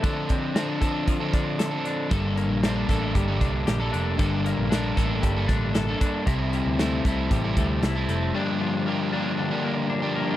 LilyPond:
<<
  \new Staff \with { instrumentName = "Clean electric guitar" } { \time 4/4 \key g \dorian \tempo 4 = 116 <d a'>8 c'8 c'16 d'16 a'8 f8 d'8 a'8 d'8 | <g, a'>8 bes8 c'16 d'16 a'8 g8 d'8 g'16 a'16 d'8 | <g, a'>8 bes8 d'8 a'8 g8 d'8 a'8 d'8 | <c e'>8 g8 a8 e'8 g8 a8 e'8 a8 |
<g, d'>8 f8 bes8 d'8 d8 bes8 d'8 bes8 | }
  \new Staff \with { instrumentName = "Overdriven electric guitar" } { \time 4/4 \key g \dorian <d f c' d' a'>4 <f c' d' a'>8 <f c' d' a'>8. <d f c' d' a'>4 <c' d' a'>8. | <g, d g bes d' a'>4 <g bes d' a'>8 <g bes d' a'>8. <g, d g bes d' a'>4 <g bes d' a'>8. | <g, d g bes d' a'>4 <g bes d' a'>8 <g bes d' a'>8. <g, d g bes d' a'>4 <g bes d' a'>8. | <c g c' e' a'>4 <g c' e' a'>8 <g c' e' a'>8. <c g c' e' a'>4 <c' e' a'>8. |
<g, d f bes d' g'>4 <f bes d' g'>8 <f bes d' g'>8. <g, d f bes d' g'>4 <f bes d' g'>8. | }
  \new Staff \with { instrumentName = "Picked electric bass" } { \clef bass \time 4/4 \key g \dorian r1 | g,,8. bes,,8. a,,8 g,,8 c,8 bes,,8 f,,8 | g,,8. bes,,8. a,,8 g,,8 a,,4 r8 | c,8. d,8. c,8 a,,8 d,8 c,8 f,,8 |
r1 | }
  \new DrumStaff \with { instrumentName = "Drums" } \drummode { \time 4/4 <hh bd>8 <hh bd>8 <hh sn>8 <hh bd>8 <hh bd>8 <hh bd sn>8 <hh sn>8 hh8 | <hh bd>8 hh8 <hh sn>8 <hh bd>8 <hh bd>8 <hh bd>8 <hh sn>8 hh8 | <hh bd>8 hh8 <hh sn>8 <hh bd>8 <hh bd>8 <hh bd sn>8 <hh sn>8 <hh bd>8 | <hh bd>8 hh8 <hh sn>8 <hh bd>8 <hh bd>8 <hh bd>8 <hh sn>8 hh8 |
r4 r4 r4 r4 | }
>>